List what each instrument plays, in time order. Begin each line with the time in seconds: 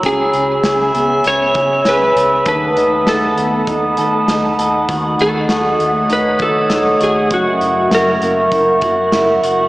Already playing: clean electric guitar E4
0.03 fingered electric bass C#2, clean electric guitar C#3 G#4, glass harmonica G#4 C#5 B5 E6, electric slide guitar G#4, kick, closed hi-hat
0.32 fingered electric bass C#2, clean electric guitar C#4, synth texture E5, closed hi-hat
0.64 fingered electric bass C#2, clean electric guitar G#4, snare, closed hi-hat
0.94 fingered electric bass C#2, clean electric guitar B3, closed hi-hat
1.24 fingered electric bass C#2, clean electric guitar C#4, electric slide guitar C#5, closed hi-hat
1.55 fingered electric bass C#3, clean electric guitar G#4, kick, closed hi-hat
1.85 fingered electric bass C#2, clean electric guitar C#4, electric slide guitar B4, snare, closed hi-hat
2.16 fingered electric bass C#2, clean electric guitar G#4, closed hi-hat
2.46 fingered electric bass D#2, clean electric guitar D#3 A4, glass harmonica A3 F#5 D#6, electric slide guitar B4, kick, closed hi-hat
2.77 fingered electric bass D#2, clean electric guitar D#4, closed hi-hat
3.07 fingered electric bass D#2, clean electric guitar A4, electric slide guitar A4, snare, closed hi-hat
3.37 fingered electric bass D#2, clean electric guitar B3, closed hi-hat
3.67 fingered electric bass D#2, clean electric guitar D#4, kick, closed hi-hat
3.97 fingered electric bass D#3, clean electric guitar A4, closed hi-hat
4.28 fingered electric bass D#2, clean electric guitar D#4, snare, closed hi-hat
4.59 fingered electric bass D#2, clean electric guitar A4, closed hi-hat
4.89 fingered electric bass D#2, clean electric guitar D#3 F#4, glass harmonica D#5, kick, closed hi-hat
5.19 fingered electric bass D#2, clean electric guitar D#4, electric slide guitar A4, closed hi-hat
5.49 fingered electric bass D#2, clean electric guitar F#4, synth texture C#5, snare, closed hi-hat
5.79 fingered electric bass D#2, clean electric guitar A3, closed hi-hat
6.09 fingered electric bass D#2, clean electric guitar D#4, electric slide guitar B4, closed hi-hat
6.39 fingered electric bass D#3, clean electric guitar F#4, electric slide guitar A4, kick, closed hi-hat
6.70 fingered electric bass D#2, clean electric guitar D#4, snare, closed hi-hat
7.00 fingered electric bass D#2, clean electric guitar F#4, electric slide guitar G#4, closed hi-hat
7.30 fingered electric bass F#1, clean electric guitar F#2 F#4, electric slide guitar F#4, glass harmonica A#4 E5 F#5 C#6, kick, closed hi-hat
7.60 fingered electric bass F#1, clean electric guitar E4, closed hi-hat
7.91 fingered electric bass F#1, clean electric guitar F#4, electric slide guitar A#4, snare, closed hi-hat
8.21 fingered electric bass F#1, clean electric guitar A#3, closed hi-hat
8.52 fingered electric bass F#1, clean electric guitar E4, kick, closed hi-hat
8.81 fingered electric bass F#2, clean electric guitar F#4, kick, closed hi-hat
9.12 fingered electric bass F#1, clean electric guitar E4, snare, closed hi-hat
9.42 fingered electric bass F#1, clean electric guitar F#4, closed hi-hat